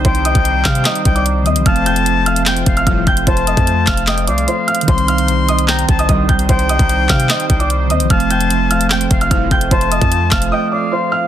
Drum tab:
HH |x--x--x--x--x-----x--x--x--x--x--x--x-----x--x--|x--x--x--x--x-----x--x--x--x--x--x--x-----x--x--|x--x--x--x--x-----x--x--x--x--x--x--x-----x-x-x-|x--x--x--x--x-----x--x--x--x--x--x--x-----x--x--|
CP |------------------x-----x-----------------------|------------------------x-----------------------|------------------x-----x-----------------------|------------------------x-----------------------|
SD |------------------o-----o-----------------------|------------------------o-----------------------|------------------o-----o-----------------------|------------------------o-----------------------|
BD |o--------o--------o-----------o-----------------|o-----------------------------o-----o-----o-----|o--------o--------o-----------------------------|o-----------------------------o-----o-----o-----|

HH |x--x--x--x--x-----x--x--x--x--x--x--x-----x--x--|x--x--x--x--x-----x--x--x--x--x--x--x-----x--x--|x--x--x--x--x-----x--x--------------------------|
CP |------------------x-----x-----------------------|------------------------x-----------------------|------------------x-----------------------------|
SD |------------------o-----o-----------------------|------------------------o-----------------------|------------------o-----------------------------|
BD |o--------o--------o-----------o-----------------|o-----------------------------o-----o-----o-----|o--------o--------o-----------------------------|